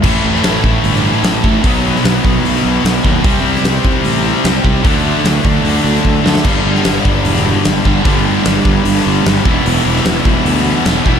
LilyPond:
<<
  \new Staff \with { instrumentName = "Distorted electric guitar" } { \clef bass \time 4/4 \key e \minor \tempo 4 = 150 <a, e a cis' e'>1 | <b, dis fis b dis'>1 | <c g c' e'>1 | <d fis a d'>1 |
<g, d g b d'>1 | <g, d g b d'>2.~ <g, d g b d'>8 <e g b e'>8~ | <e g b e'>2.~ <e g b e'>8 <e g b e'>8 | }
  \new Staff \with { instrumentName = "Distorted electric guitar" } { \clef bass \time 4/4 \key e \minor <a, e a>2.~ <a, e a>8 <a, e a>8 | <b, fis b>2.~ <b, fis b>8 <b, fis b>8 | <c g c'>2.~ <c g c'>8 <c g c'>8 | <d a d'>2.~ <d a d'>8 <d a d'>8 |
<g, d g>2.~ <g, d g>8 <g, d g>8 | <g, d g>2.~ <g, d g>8 <e, b, e>8~ | <e, b, e>2. <e, b, e>8 <e, b, e>8 | }
  \new Staff \with { instrumentName = "Distorted electric guitar" } { \clef bass \time 4/4 \key e \minor <a, e a>1 | <b, fis b>1 | <c g c'>1 | <d a d'>1 |
<g, d g>1 | <g, d g>2.~ <g, d g>8 <e, b, e>8~ | <e, b, e>2.~ <e, b, e>8 <e, b, e>8 | }
  \new Staff \with { instrumentName = "Fingered electric bass" } { \clef bass \time 4/4 \key e \minor a,,8 a,,8 a,,8 a,,8 g,,4 a,,8 a,,8 | b,,4 b,,8 b,,8 b,,8 b,,8 b,,8 dis,8 | c,8 c,8 c,8 c,8 a,,4 c,8 c,8 | d,4 d,8 d,8 d,8 d,8 d,8 d,8 |
g,,8 g,,8 g,,8 g,,8 e,,4 g,,8 g,,8 | g,,4 g,,8 g,,8 g,,8 g,,8 g,,8 e,,8 | e,,8 e,,8 e,,8 e,,8 d,4 e,,8 e,,8 | }
  \new DrumStaff \with { instrumentName = "Drums" } \drummode { \time 4/4 <cymc bd>8. sn16 <hho sn>8 bd8 hho16 sn8. <hho sn>8 bd8 | <hho bd>8. sn16 <hho sn>8 bd8 hho16 sn8. <hho sn>8 bd8 | <hho bd>8. sn16 <hho sn>8 bd8 hho4 <hho sn>8 bd8 | <hho bd>4 <hho sn>8 bd8 hho4 bd8 sn16 sn16 |
<cymc bd>8. sn16 <hho sn>8 bd8 hho16 sn8. <hho sn>8 bd8 | <hho bd>4 <hho sn>8 bd8 hho16 sn8. <hho sn>8 bd8 | hho8. sn16 <hho sn>8 bd8 hho4 <hho sn>8 bd8 | }
>>